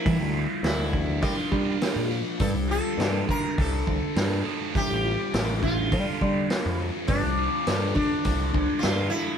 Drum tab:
HH |o-o-o-o-|o-o-o-o-|o-o-o-o-|o-o-o-o-|
SD |--o---o-|--o---o-|--o---o-|--o---o-|
BD |o--ooo--|o--ooo--|o--ooo--|o--ooo--|